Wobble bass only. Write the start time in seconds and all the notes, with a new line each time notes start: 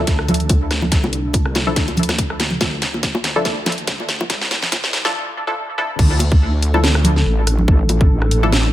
0.07 D2
0.92 C2
1.76 D2
2.61 D2
3.45 D2
4.30 C2
5.99 D2
7.26 A1
8.10 A1